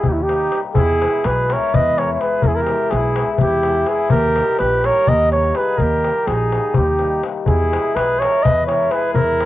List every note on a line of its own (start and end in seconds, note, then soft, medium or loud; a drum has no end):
0.00 0.28 G3 medium
0.00 0.11 E4 medium
0.00 darbuka dum medium
0.05 0.47 D#2 medium
0.05 0.14 G4 medium
0.09 0.17 D#4 soft
0.09 0.24 E4 medium
0.16 0.25 C#4 soft
0.16 darbuka tek soft
0.23 0.60 D#4 medium
0.23 0.59 G4 medium
0.29 0.52 G3 medium
0.29 0.44 A#3 medium
0.29 0.44 D#4 soft
0.29 0.45 G4 medium
0.29 darbuka tek medium
0.41 darbuka tek soft
0.52 0.80 G3 medium
0.52 0.67 A#3 medium
0.52 0.67 D#4 medium
0.52 0.68 G4 medium
0.52 darbuka tek medium
0.65 darbuka tek soft
0.75 1.05 E2 medium
0.75 1.27 E4 medium
0.75 1.27 G#4 loud
0.75 darbuka dum medium
0.89 darbuka tek soft
1.01 1.49 E3 medium
1.01 1.48 G#3 medium
1.01 1.16 B3 medium
1.01 1.16 E4 medium
1.01 darbuka tek medium
1.15 darbuka tek soft
1.24 1.54 B1 medium
1.24 1.51 G#4 medium
1.24 1.54 B4 medium
1.24 darbuka tek medium
1.38 darbuka tek soft
1.49 1.96 E3 medium
1.49 1.96 G#3 medium
1.49 1.64 B3 medium
1.49 1.65 E4 medium
1.49 1.75 A#4 medium
1.49 1.76 C#5 loud
1.49 darbuka tek medium
1.63 darbuka tek soft
1.74 2.16 E2 medium
1.74 1.99 B4 medium
1.74 2.00 D#5 loud
1.74 darbuka dum medium
1.86 darbuka tek soft
1.97 2.20 E3 medium
1.97 2.20 G#3 medium
1.97 2.12 B3 medium
1.97 2.12 E4 medium
1.97 2.14 A#4 medium
1.97 2.13 C#5 loud
1.97 darbuka tek medium
2.10 2.22 C#5 medium
2.10 darbuka tek soft
2.14 2.22 A#4 medium
2.21 2.67 E3 medium
2.21 2.68 G#3 medium
2.21 2.35 B3 medium
2.21 2.36 E4 medium
2.21 2.47 G#4 medium
2.21 2.44 B4 loud
2.21 darbuka tek medium
2.32 darbuka tek soft
2.42 2.73 E2 medium
2.42 2.53 E4 medium
2.42 2.49 A#4 medium
2.42 darbuka dum medium
2.47 2.57 G#4 medium
2.53 2.63 E4 medium
2.53 2.92 A#4 medium
2.53 darbuka tek soft
2.61 2.97 G4 medium
2.67 3.16 E3 medium
2.67 3.16 G#3 medium
2.67 2.83 B3 medium
2.67 2.84 E4 medium
2.67 darbuka tek medium
2.79 darbuka tek soft
2.91 3.22 B1 medium
2.91 3.32 G#4 loud
2.91 darbuka tek medium
2.95 3.35 E4 medium
3.03 darbuka tek soft
3.16 3.64 E3 medium
3.16 3.64 G#3 medium
3.16 3.32 B3 medium
3.16 3.33 E4 medium
3.16 darbuka tek medium
3.28 3.42 G#4 medium
3.28 darbuka tek soft
3.35 3.40 E4 medium
3.35 darbuka dum loud
3.40 3.83 E2 medium
3.40 3.89 E4 medium
3.40 3.90 G4 loud
3.53 darbuka tek soft
3.63 3.87 E3 medium
3.63 3.88 G#3 medium
3.63 3.80 B3 medium
3.63 darbuka tek medium
3.68 3.81 E4 medium
3.75 darbuka tek soft
3.86 4.16 E3 medium
3.86 4.16 G#3 medium
3.86 4.03 B3 medium
3.86 4.09 E4 medium
3.86 4.03 E4 medium
3.86 4.11 G#4 medium
3.86 darbuka tek medium
3.99 darbuka tek soft
4.10 4.40 D#2 medium
4.10 4.56 G4 loud
4.10 4.57 A#4 loud
4.10 darbuka dum loud
4.24 darbuka tek soft
4.36 4.84 D#3 medium
4.36 4.84 G3 medium
4.36 4.51 A#3 medium
4.36 4.52 D#4 medium
4.36 darbuka tek medium
4.49 darbuka tek soft
4.59 4.89 A#1 medium
4.59 4.86 G4 medium
4.59 4.87 B4 loud
4.59 darbuka tek medium
4.73 darbuka tek soft
4.84 5.33 D#3 medium
4.84 5.33 G3 medium
4.84 5.00 A#3 medium
4.84 5.00 D#4 medium
4.84 5.08 A#4 medium
4.84 5.10 C#5 medium
4.84 darbuka tek medium
4.95 darbuka tek soft
5.07 5.50 D#2 medium
5.07 5.33 A#4 medium
5.07 5.31 D#5 loud
5.07 darbuka dum medium
5.20 darbuka tek soft
5.32 5.57 D#3 medium
5.32 5.57 G3 medium
5.32 5.48 A#3 medium
5.32 5.48 D#4 medium
5.32 5.58 A#4 medium
5.32 5.58 C#5 medium
5.32 darbuka tek soft
5.43 darbuka tek soft
5.55 6.05 D#3 medium
5.55 6.06 G3 medium
5.55 5.82 G#4 medium
5.55 5.79 B4 medium
5.55 darbuka tek medium
5.59 5.71 A#3 medium
5.59 5.72 D#4 medium
5.66 darbuka tek soft
5.77 6.08 D#2 medium
5.77 6.32 G4 medium
5.77 6.29 A#4 medium
5.77 darbuka dum medium
5.92 darbuka tek soft
6.04 6.52 D#3 medium
6.04 6.52 G3 medium
6.04 6.20 A#3 medium
6.04 6.20 D#4 medium
6.04 darbuka tek medium
6.16 darbuka tek soft
6.27 6.57 A#1 medium
6.27 6.78 D#4 medium
6.27 6.78 G#4 medium
6.27 darbuka tek medium
6.52 6.99 D#3 medium
6.52 7.00 G3 medium
6.52 6.68 A#3 medium
6.52 6.69 D#4 medium
6.52 darbuka tek medium
6.63 darbuka tek soft
6.74 7.19 D#2 medium
6.74 7.24 D#4 medium
6.74 7.24 G4 medium
6.74 darbuka dum medium
6.88 darbuka tek soft
6.99 7.22 D#3 medium
6.99 7.23 G3 medium
6.99 7.15 A#3 medium
6.99 7.16 D#4 medium
6.99 darbuka tek soft
7.12 darbuka tek soft
7.23 7.51 D#3 medium
7.23 7.51 G3 soft
7.23 7.38 A#3 medium
7.23 7.39 D#4 medium
7.23 darbuka tek medium
7.36 darbuka tek soft
7.46 7.76 E2 medium
7.46 7.99 E4 medium
7.46 7.97 G#4 medium
7.46 darbuka dum medium
7.60 darbuka tek soft
7.71 8.19 E3 medium
7.71 8.19 G#3 medium
7.71 7.87 B3 medium
7.71 7.87 E4 medium
7.71 darbuka tek medium
7.85 darbuka tek soft
7.96 8.25 B1 medium
7.96 8.24 G#4 medium
7.96 8.21 B4 loud
7.96 darbuka tek medium
8.10 darbuka tek soft
8.19 8.66 E3 medium
8.19 8.66 G#3 medium
8.19 8.35 B3 medium
8.19 8.36 E4 medium
8.19 8.46 A#4 medium
8.19 8.44 C#5 loud
8.19 darbuka tek medium
8.35 darbuka tek soft
8.43 8.87 E2 medium
8.43 8.69 B4 medium
8.43 8.66 D#5 loud
8.43 darbuka dum loud
8.57 darbuka tek soft
8.67 8.91 E3 medium
8.67 8.91 G#3 medium
8.67 8.82 B3 medium
8.67 8.83 E4 medium
8.67 8.95 A#4 medium
8.67 8.93 C#5 medium
8.67 darbuka tek medium
8.81 darbuka tek soft
8.91 9.38 E3 medium
8.91 9.39 G#3 medium
8.91 9.06 B3 medium
8.91 9.06 E4 medium
8.91 9.15 G#4 medium
8.91 9.13 B4 medium
8.91 darbuka tek medium
9.04 darbuka tek soft
9.14 9.43 E2 medium
9.14 9.45 E4 medium
9.14 9.45 A#4 loud
9.14 darbuka dum loud
9.29 darbuka tek soft
9.39 9.45 E3 medium
9.39 9.45 G#3 medium
9.39 9.45 B3 medium
9.39 9.45 E4 medium
9.39 darbuka tek medium